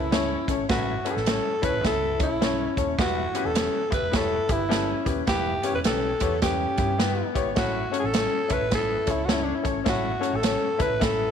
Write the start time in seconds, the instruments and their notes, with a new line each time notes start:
Already playing: fingered electric bass C#2, alto saxophone E4
0.11 clean electric guitar C#4, upright piano C#4 E4 A4 C#5, snare, closed hi-hat
0.48 fingered electric bass G#1, upright piano C#4 E4 A4 C#5, kick, closed hi-hat
0.69 fingered electric bass A1, upright piano A2 C#4 E4 A4 B4, clean electric guitar E4, alto saxophone F#4, kick, snare, closed hi-hat
1.05 upright piano C#4 E4 A4 B4, clean electric guitar C#4, closed hi-hat
1.11 alto saxophone G#4
1.16 fingered electric bass A1, alto saxophone A4, snare
1.26 upright piano C#4 E4 A4 C#5, clean electric guitar C#4, snare, closed hi-hat
1.62 fingered electric bass C#2, upright piano C#4 E4 A4 C#5, clean electric guitar E4, alto saxophone B4, kick, closed hi-hat
1.73 fingered electric bass A1
1.83 fingered electric bass C#2, upright piano C#4 E4 A4 E5, clean electric guitar E4, alto saxophone A4, kick, snare, closed hi-hat
2.19 upright piano C#4 E4 A4 C#5, alto saxophone E4, kick, closed hi-hat
2.31 fingered electric bass B1
2.41 clean electric guitar C#4, upright piano C#4 E4 A4 C#5, snare, closed hi-hat
2.77 fingered electric bass D#1, upright piano C#4 E4 A4 C#5, kick, closed hi-hat
2.98 fingered electric bass E1, upright piano E3 B3 E4 G4 B4, clean electric guitar E4, alto saxophone F#4, kick, snare, closed hi-hat
3.34 upright piano B3 E4 G4 B4, clean electric guitar C#4, closed hi-hat
3.45 fingered electric bass E1, alto saxophone A4
3.54 upright piano B3 E4 G4 B4, clean electric guitar C#4, snare, closed hi-hat
3.90 fingered electric bass G1, upright piano B3 E4 G4 B4, clean electric guitar E4, alto saxophone B4, kick, closed hi-hat
4.02 fingered electric bass E1
4.11 upright piano B3 E4 G4 C#5, clean electric guitar E4, kick, snare, closed hi-hat
4.16 alto saxophone A4
4.47 fingered electric bass G1, upright piano B3 E4 G4 B4, kick, closed hi-hat
4.52 alto saxophone E4
4.69 upright piano B3 E4 G4 A4, clean electric guitar C#4, snare, closed hi-hat
5.06 fingered electric bass D#1, upright piano B3 E4 G4 B4, kick, closed hi-hat
5.27 fingered electric bass E1, upright piano E3 B3 E4 G4 B4, clean electric guitar E4, alto saxophone G4, kick, snare, closed hi-hat
5.63 upright piano B3 E4 G4 C#5, clean electric guitar C#4, closed hi-hat
5.73 fingered electric bass E1, alto saxophone B4
5.84 fingered electric bass B1, upright piano B3 E4 G4 B4, clean electric guitar C#4, alto saxophone A4, snare, closed hi-hat
6.20 fingered electric bass E2, upright piano B3 E4 G4 C#5, clean electric guitar B3, kick, closed hi-hat
6.42 upright piano B3 E4 G4 B4, clean electric guitar C#4, alto saxophone G4, kick, snare, closed hi-hat
6.77 fingered electric bass G2, upright piano B3 E4 G4 B4, kick, closed hi-hat
6.98 upright piano B3 E4 G4 B4, clean electric guitar B3, snare, closed hi-hat
7.34 fingered electric bass G#1, upright piano B3 E4 G4 C#5, kick, closed hi-hat
7.55 fingered electric bass A1, upright piano A2 C#4 E4 A4 C#5, clean electric guitar E4, alto saxophone F#4, kick, snare, closed hi-hat
7.91 upright piano C#4 E4 A4 C#5, clean electric guitar C#4, closed hi-hat
7.99 alto saxophone G#4
8.04 fingered electric bass A1, alto saxophone A4
8.13 upright piano C#4 E4 A4 C#5, clean electric guitar C#4, snare, closed hi-hat
8.48 fingered electric bass C#2, upright piano C#4 E4 A4 C#5, clean electric guitar E4, kick, closed hi-hat
8.53 alto saxophone B4
8.61 fingered electric bass A1
8.70 upright piano C#4 E4 A4 B4, clean electric guitar E4, kick, snare, closed hi-hat
8.75 alto saxophone A4
9.06 fingered electric bass C#2, upright piano C#4 E4 A4 C#5, kick, closed hi-hat
9.11 alto saxophone E4
9.25 upright piano C#4 E4 A4 C#5, clean electric guitar C#4, alto saxophone F#4, snare, closed hi-hat
9.33 alto saxophone E4
9.44 alto saxophone D4
9.55 alto saxophone E4
9.63 fingered electric bass G#1, upright piano C#4 E4 A4 C#5, kick, closed hi-hat
9.84 fingered electric bass A1, upright piano A2 C#4 E4 A4 C#5, clean electric guitar E4, kick, snare, closed hi-hat
9.89 alto saxophone F#4
10.20 upright piano C#4 E4 A4 C#5, clean electric guitar C#4, closed hi-hat
10.33 fingered electric bass A1, alto saxophone A4
10.42 upright piano C#4 E4 A4 C#5, clean electric guitar C#4, snare, closed hi-hat
10.78 fingered electric bass C#2, upright piano C#4 E4 A4 B4, clean electric guitar E4, alto saxophone B4, kick, closed hi-hat
10.90 fingered electric bass A1
10.99 upright piano C#4 E4 A4 E5, clean electric guitar E4, alto saxophone A4, kick, snare, closed hi-hat